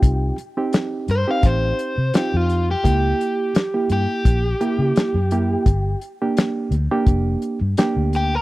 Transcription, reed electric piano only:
X:1
M:4/4
L:1/16
Q:"Swing 16ths" 1/4=85
K:Gm
V:1 name="Reed electric piano"
[CEF]2 z [CEG]3 z [CEG]4 z [CEF]3 z | [^A,=EG]4 z [A,EG]4 z [A,EG]3 z [A,EG]2 | z3 [B,DG]3 z [B,DG]4 z [B,DG]3 z |]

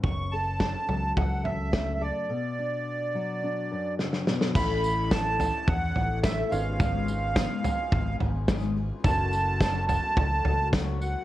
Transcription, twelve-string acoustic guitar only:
X:1
M:4/4
L:1/8
Q:1/4=107
K:A
V:1 name="Twelve-string acoustic guitar"
z8 | z8 | [A,,E,A,CEA] [A,CEA] [A,C] [A,CEA] [A,CEA] [A,CEA] [A,,A,CEA] [G,^EG] | [G,,C,G,B,^EG] [G,B,EG] [G,,C,G,B,EG] [G,B,EG] [G,B,EG] [G,B,EG] [G,,C,G,B,EG] [G,B,EG] |
[F,,C,F,A,CF] [F,A,CF] [F,,C,F,A,CF] [F,A,CF] [F,A,CF] [F,A,CF] [F,,C,F,A,CF] [F,A,CF] |]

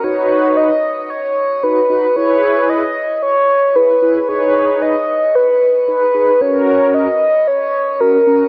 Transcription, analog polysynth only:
X:1
M:4/4
L:1/16
Q:1/4=113
K:B
V:1 name="Analog polysynth"
[DFB]4- [DFB] z6 z [DFB]2 [DFB]2 | [EGB]4- [EGB] z6 z [EGB]2 [EGB]2 | [DGB]4- [DGB] z6 z [DGB]2 [DGB]2 | [CFA]4- [CFA] z6 z [CFA]2 [CFA]2 |]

